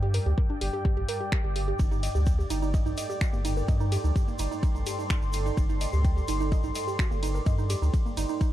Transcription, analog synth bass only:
Already playing: G2
0.26 D2
0.61 G1
0.97 A#1
1.44 G1
1.79 G1
2.15 D2
2.50 G1
2.86 A1
3.33 G1
3.68 G2
4.04 D2
4.39 G1
4.75 A#1
5.22 G1
5.57 G1
5.93 D2
6.28 G1
6.64 A1
7.11 G1
7.46 G2
7.82 D2
8.17 G1

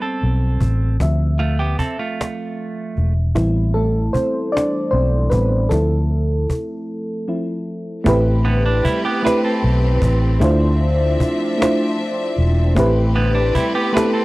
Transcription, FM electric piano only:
Already playing: G3 B3 C4
1.00 F3 C4 E5
3.35 E3 G3 B3 C4 E4
3.74 A3 A4
4.13 C4 C5
4.52 D4 D5
4.91 C4 C5
5.30 G3 B3 C4 B4
5.69 F3 A3 C4 E4 A4
7.28 F3 C4 E4
8.04 A3 B3 E4 G4
8.09 C4 B4
9.23 A3 C4 E4 G4
9.27 B4
10.40 A3 D4 E4 F4
10.44 C5
11.58 A3 D4 E4 F4
11.62 C5
12.75 A3 C4 E4 G4
12.80 B4
13.93 A3 B3 E4 G4
13.97 C4 A4

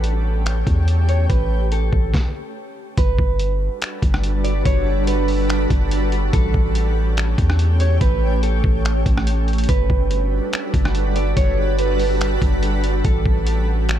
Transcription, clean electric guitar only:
Already playing: A4
1.09 C#5
1.29 B4
1.72 A4
2.98 B4
4.44 D5
4.65 C#5
5.08 B4
6.34 A4
7.80 C#5
8.01 B4
8.43 A4
9.69 B4
11.16 D5
11.37 C#5
11.79 B4
13.05 A4

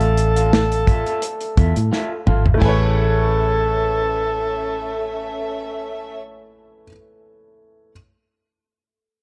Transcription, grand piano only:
Already playing: A3 A4 D5 E5 F5
2.54 A3 E4
2.61 G#5
2.65 B4 C#5

